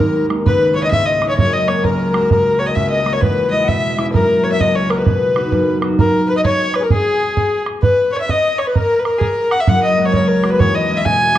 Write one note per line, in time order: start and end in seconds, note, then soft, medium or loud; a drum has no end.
0.00 0.51 D#2 medium
0.00 0.28 G#3 soft
0.00 0.29 A#3 soft
0.00 0.75 C#4 soft
0.00 0.30 D#4 medium
0.00 0.89 F#4 medium
0.00 0.26 A#4 medium
0.00 bodhran medium
0.29 0.51 G#3 medium
0.29 1.67 A#3 medium
0.29 0.82 D#4 medium
0.29 bodhran medium
0.46 1.43 C#2 medium
0.46 0.74 B4 loud
0.46 0.77 B4 medium
0.46 bodhran medium
0.75 1.20 G#3 soft
0.75 1.21 C#4 soft
0.75 1.22 E4 medium
0.75 0.83 C#5 medium
0.75 0.85 C#5 medium
0.83 0.90 D#5 loud
0.83 0.93 D#5 medium
0.91 1.43 G#2 medium
0.91 1.07 E5 loud
0.91 1.06 E5 medium
0.91 bodhran medium
1.06 1.28 D#5 medium
1.06 1.31 D#5 medium
1.21 1.43 G#3 soft
1.21 3.52 C#4 soft
1.21 3.52 E4 medium
1.21 bodhran medium
1.29 1.37 C#5 medium
1.38 1.89 F#2 medium
1.38 1.55 C#5 loud
1.38 1.53 C#5 medium
1.38 bodhran medium
1.53 1.68 D#5 medium
1.53 1.69 D#5 medium
1.67 2.12 G#3 medium
1.67 2.13 A#3 soft
1.67 2.13 F#4 medium
1.67 1.85 C#5 medium
1.67 bodhran medium
1.84 2.29 C#2 medium
1.84 2.30 A#4 medium
1.84 bodhran medium
2.13 2.58 G#3 medium
2.13 2.59 A#3 soft
2.13 2.59 F#4 medium
2.13 bodhran medium
2.30 2.75 C#2 medium
2.30 2.60 A#4 medium
2.30 2.61 A#4 medium
2.30 bodhran medium
2.59 3.04 G#3 soft
2.59 3.05 A#3 soft
2.59 3.06 F#4 medium
2.59 2.68 C#5 medium
2.59 2.69 C#5 medium
2.66 2.77 D#5 medium
2.75 3.27 C#2 medium
2.75 2.89 E5 medium
2.75 2.92 E5 medium
2.75 bodhran medium
2.90 3.15 D#5 medium
2.90 3.13 D#5 medium
3.05 3.27 G#3 medium
3.05 3.75 A#3 soft
3.05 4.44 F#4 medium
3.05 bodhran medium
3.13 3.23 C#5 medium
3.21 4.19 E2 medium
3.21 3.50 B4 loud
3.21 3.53 B4 medium
3.21 bodhran medium
3.51 3.96 G#3 soft
3.51 3.98 C#4 soft
3.51 3.98 E4 medium
3.51 3.69 D#5 medium
3.51 3.64 D#5 medium
3.64 4.06 E5 medium
3.64 3.69 F#5 medium
3.68 4.19 B2 medium
3.68 4.03 E5 medium
3.68 bodhran medium
3.97 4.19 G#3 medium
3.97 4.44 C#4 soft
3.97 5.42 E4 medium
3.97 bodhran medium
4.13 4.65 F#2 medium
4.13 4.45 A#4 loud
4.13 4.45 A#4 medium
4.13 bodhran medium
4.44 4.90 A#3 medium
4.44 4.90 C#4 soft
4.44 4.91 F#4 medium
4.44 4.52 C#5 medium
4.44 4.53 C#5 medium
4.51 4.60 E5 medium
4.51 4.62 E5 medium
4.60 5.12 C#2 medium
4.60 4.74 D#5 medium
4.60 4.77 D#5 medium
4.60 bodhran medium
4.75 4.91 C#5 medium
4.90 5.13 A#3 soft
4.90 7.81 C#4 soft
4.90 5.36 F#4 medium
4.90 4.97 A#4 medium
4.90 4.99 A#4 medium
4.90 bodhran medium
4.98 5.82 B4 medium
4.98 5.78 B4 medium
5.06 5.58 B2 medium
5.06 bodhran medium
5.35 5.81 B3 soft
5.35 5.81 D#4 soft
5.35 5.82 F#4 medium
5.35 bodhran medium
5.52 6.04 F#2 medium
5.52 bodhran medium
5.81 8.92 B3 medium
5.81 8.52 D#4 medium
5.81 8.26 F#4 medium
5.81 bodhran medium
5.99 6.29 A#4 medium
5.99 6.27 A#4 medium
5.99 bodhran medium
6.28 6.37 B4 medium
6.28 6.36 B4 medium
6.36 6.45 D#5 medium
6.36 6.41 D#5 loud
6.44 6.81 C#5 medium
6.44 6.77 C#5 loud
6.44 bodhran medium
6.74 6.85 B4 medium
6.74 bodhran medium
6.80 6.82 G#4 soft
6.80 6.91 A#4 medium
6.80 6.92 A#4 medium
6.90 7.62 G#4 medium
6.90 7.63 G#4 medium
6.90 bodhran medium
7.37 bodhran medium
7.66 bodhran medium
7.82 8.10 B4 medium
7.82 8.13 B4 medium
7.82 bodhran medium
8.13 8.20 C#5 medium
8.13 8.21 C#5 medium
8.21 8.29 E5 medium
8.21 8.32 E5 medium
8.29 8.60 D#5 medium
8.29 bodhran medium
8.58 8.69 C#5 medium
8.58 8.67 C#5 medium
8.58 bodhran medium
8.67 8.76 B4 medium
8.67 8.75 B4 medium
8.75 9.03 A#4 medium
8.75 9.01 A#4 loud
8.75 bodhran medium
8.99 9.06 B4 medium
9.05 9.20 A#4 medium
9.05 bodhran medium
9.18 9.23 G#4 medium
9.18 9.53 A#4 medium
9.18 9.52 A#4 medium
9.18 bodhran medium
9.51 9.60 F#5 medium
9.51 9.62 F#5 medium
9.51 bodhran medium
9.60 9.68 E5 medium
9.60 9.71 E5 medium
9.67 10.65 F#1 medium
9.67 10.19 F#2 medium
9.67 9.83 F#5 medium
9.67 9.82 F#5 medium
9.67 bodhran medium
9.83 10.07 D#5 medium
9.97 10.42 G#3 soft
9.97 10.43 A#3 soft
9.97 10.44 F#4 medium
10.05 10.13 C#5 medium
10.05 10.14 C#5 medium
10.13 10.65 C#2 medium
10.13 10.29 C#5 medium
10.13 10.50 C#5 medium
10.13 bodhran medium
10.28 10.52 A#4 medium
10.43 10.65 G#3 medium
10.43 11.12 A#3 soft
10.43 11.38 F#4 medium
10.43 bodhran medium
10.50 10.61 B4 medium
10.50 10.60 B4 medium
10.59 11.38 E1 medium
10.59 11.38 E2 medium
10.59 10.77 C#5 loud
10.59 10.76 C#5 medium
10.59 bodhran medium
10.75 10.99 D#5 medium
10.90 11.34 G#3 soft
10.90 11.35 C#4 soft
10.90 11.36 E4 medium
10.97 11.07 E5 medium
11.06 11.38 B2 medium
11.06 11.38 G#5 loud
11.06 11.38 G#5 medium
11.06 bodhran medium
11.35 11.38 G#3 medium